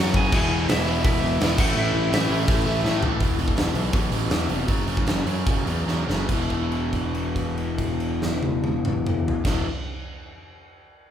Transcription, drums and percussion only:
0.14 kick
0.32 kick, crash
0.69 snare, open hi-hat
1.05 kick, open hi-hat
1.41 snare, open hi-hat
1.58 kick, crash
2.13 snare, open hi-hat
2.48 kick, open hi-hat
2.85 snare
3.03 floor tom
3.20 kick, open hi-hat
3.39 open hi-hat
3.48 kick
3.57 snare, open hi-hat
3.75 open hi-hat
3.93 kick, open hi-hat
4.12 open hi-hat
4.30 snare, open hi-hat
4.49 open hi-hat
4.68 kick, open hi-hat
4.87 open hi-hat
4.97 kick
5.07 snare, open hi-hat
5.27 open hi-hat
5.47 kick, open hi-hat
5.67 open hi-hat
5.88 snare
6.10 snare
6.29 kick, crash
6.50 kick, crash
6.72 crash
6.93 kick, crash
7.15 crash
7.36 kick, crash
7.58 crash
7.78 kick, crash
8.00 crash
8.22 snare
8.43 high tom
8.64 high tom
8.85 mid tom
9.06 mid tom
9.28 floor tom
9.45 kick, snare, crash

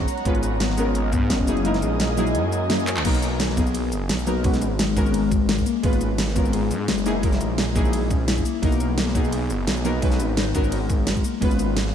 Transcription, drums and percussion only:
0.00 kick
0.08 open hi-hat, shaker
0.17 closed hi-hat
0.25 kick, closed hi-hat
0.35 closed hi-hat
0.43 closed hi-hat, shaker
0.60 snare, closed hi-hat
0.70 snare
0.78 open hi-hat, shaker
0.95 closed hi-hat
1.13 kick, closed hi-hat, shaker
1.30 snare, closed hi-hat
1.40 kick
1.47 open hi-hat, shaker
1.57 closed hi-hat
1.65 closed hi-hat
1.74 snare, closed hi-hat
1.82 closed hi-hat, shaker
2.00 snare, closed hi-hat
2.17 open hi-hat, shaker
2.27 closed hi-hat, shaker
2.35 closed hi-hat
2.52 closed hi-hat, shaker
2.70 snare, closed hi-hat
2.79 shaker
2.87 clap, open hi-hat, shaker
2.97 clap, closed hi-hat
3.05 kick, closed hi-hat, crash, ride
3.14 closed hi-hat, shaker
3.22 closed hi-hat, shaker
3.40 snare, closed hi-hat, ride
3.49 snare
3.57 kick, open hi-hat, shaker
3.66 shaker
3.75 closed hi-hat, ride
3.92 closed hi-hat, shaker
4.09 snare, closed hi-hat, ride
4.19 shaker
4.27 open hi-hat, shaker
4.44 kick, closed hi-hat, ride
4.54 snare, closed hi-hat, shaker
4.62 closed hi-hat, shaker
4.79 snare, closed hi-hat, ride
4.97 kick, open hi-hat, shaker
5.06 shaker
5.14 closed hi-hat, ride
5.31 kick, closed hi-hat, shaker
5.49 snare, closed hi-hat, ride
5.58 kick, shaker
5.66 open hi-hat, shaker
5.83 kick, closed hi-hat, ride
5.93 closed hi-hat, shaker
6.01 closed hi-hat, shaker
6.18 snare, closed hi-hat, ride
6.28 snare
6.36 kick, open hi-hat, shaker
6.45 shaker
6.53 closed hi-hat, ride
6.71 closed hi-hat, shaker
6.88 snare, closed hi-hat, ride
6.98 shaker
7.06 open hi-hat, shaker
7.23 kick, closed hi-hat, ride
7.33 snare, closed hi-hat, shaker
7.41 closed hi-hat, shaker
7.58 snare, closed hi-hat, ride
7.76 kick, open hi-hat, shaker
7.85 shaker
7.93 closed hi-hat, ride
8.11 kick, closed hi-hat, shaker
8.28 snare, closed hi-hat, ride
8.37 kick, shaker
8.45 open hi-hat, shaker
8.63 kick, closed hi-hat, ride
8.72 closed hi-hat, shaker
8.80 closed hi-hat, shaker
8.98 snare, closed hi-hat, ride
9.07 snare
9.15 kick, open hi-hat, shaker
9.24 shaker
9.32 closed hi-hat, ride
9.50 closed hi-hat, shaker
9.67 snare, closed hi-hat, ride
9.77 shaker
9.85 open hi-hat, shaker
10.02 kick, closed hi-hat, ride
10.12 snare, closed hi-hat, shaker
10.20 closed hi-hat, shaker
10.37 snare, closed hi-hat, ride
10.55 kick, open hi-hat, shaker
10.64 shaker
10.72 closed hi-hat, ride
10.90 kick, closed hi-hat, shaker
11.07 snare, closed hi-hat, ride
11.16 kick, shaker
11.24 open hi-hat, shaker
11.42 kick, closed hi-hat, ride
11.51 closed hi-hat, shaker
11.59 closed hi-hat, shaker
11.77 snare, closed hi-hat, ride
11.86 snare

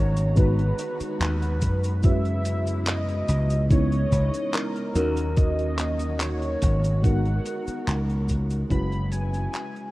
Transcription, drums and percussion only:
0.17 closed hi-hat, cabasa
0.36 kick, closed hi-hat, cabasa
0.59 closed hi-hat
0.79 closed hi-hat, cabasa
1.00 closed hi-hat, cabasa
1.21 clap, closed hi-hat, cabasa
1.42 closed hi-hat
1.61 kick, closed hi-hat, cabasa
1.84 closed hi-hat, cabasa
2.03 kick, closed hi-hat, cabasa
2.25 closed hi-hat
2.45 closed hi-hat, cabasa
2.67 closed hi-hat, cabasa
2.87 clap, closed hi-hat, cabasa
3.09 closed hi-hat
3.28 closed hi-hat, cabasa
3.50 closed hi-hat, cabasa
3.71 kick, closed hi-hat, cabasa
3.92 closed hi-hat
4.12 kick, closed hi-hat, cabasa
4.34 closed hi-hat, cabasa
4.53 clap, closed hi-hat, cabasa
4.76 closed hi-hat
4.96 closed hi-hat, cabasa
5.17 closed hi-hat, cabasa
5.37 kick, closed hi-hat, cabasa
5.59 closed hi-hat
5.78 clap, closed hi-hat, cabasa
5.99 closed hi-hat, cabasa
6.20 clap, closed hi-hat, cabasa
6.42 closed hi-hat
6.62 kick, closed hi-hat, cabasa
6.84 closed hi-hat, cabasa
7.04 kick, closed hi-hat, cabasa
7.25 closed hi-hat
7.45 closed hi-hat, cabasa
7.67 closed hi-hat, cabasa
7.88 clap, closed hi-hat, cabasa
8.10 closed hi-hat
8.29 kick, closed hi-hat, cabasa
8.50 closed hi-hat, cabasa
8.70 kick, closed hi-hat, cabasa
8.92 closed hi-hat
9.12 closed hi-hat, cabasa
9.34 closed hi-hat, cabasa
9.53 clap, closed hi-hat, cabasa
9.76 closed hi-hat

